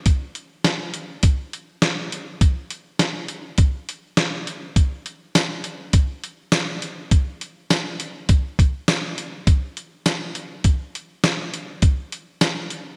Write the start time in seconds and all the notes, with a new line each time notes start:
0.06 kick, closed hi-hat
0.35 closed hi-hat
0.64 snare, closed hi-hat
0.94 closed hi-hat
1.23 kick, closed hi-hat
1.53 closed hi-hat
1.82 snare, closed hi-hat
2.12 closed hi-hat
2.41 kick, closed hi-hat
2.70 closed hi-hat
2.99 snare, closed hi-hat
3.28 closed hi-hat
3.58 kick, closed hi-hat
3.89 closed hi-hat
4.17 snare, closed hi-hat
4.47 closed hi-hat
4.76 kick, closed hi-hat
5.06 closed hi-hat
5.35 snare, closed hi-hat, tambourine
5.64 closed hi-hat
5.93 kick, closed hi-hat
6.24 closed hi-hat
6.52 snare, closed hi-hat, tambourine
6.82 closed hi-hat
7.11 kick, closed hi-hat
7.41 closed hi-hat
7.70 snare, closed hi-hat, tambourine
8.00 closed hi-hat
8.29 kick, closed hi-hat
8.59 kick, closed hi-hat
8.88 snare, closed hi-hat, tambourine
9.18 closed hi-hat
9.47 kick, closed hi-hat
9.77 closed hi-hat
10.06 snare, closed hi-hat, tambourine
10.35 closed hi-hat
10.64 kick, closed hi-hat
10.95 closed hi-hat
11.24 snare, closed hi-hat, tambourine
11.54 closed hi-hat
11.82 kick, closed hi-hat
12.12 closed hi-hat
12.41 snare, closed hi-hat, tambourine
12.70 closed hi-hat